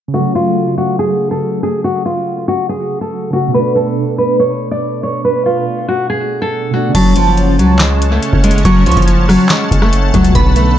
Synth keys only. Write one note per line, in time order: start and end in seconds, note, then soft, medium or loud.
0.08 3.26 C#3 medium
0.14 3.29 A3 medium
0.19 3.32 F#3 medium
3.31 3.53 C#3 soft
3.31 3.52 A3 soft
3.36 3.56 F#4 medium
3.48 6.66 B2 medium
3.54 6.69 A3 medium
3.59 6.72 D4 medium
6.71 6.93 B2 medium
6.71 6.95 A3 soft
6.76 6.96 D4 medium
6.89 10.07 C#3 medium
6.95 10.10 C#4 medium
10.11 10.34 C#3 medium
10.11 10.35 A3 soft
10.17 10.37 F#4 medium
10.29 10.79 B2 medium
10.34 10.79 B3 medium
10.40 10.79 D3 medium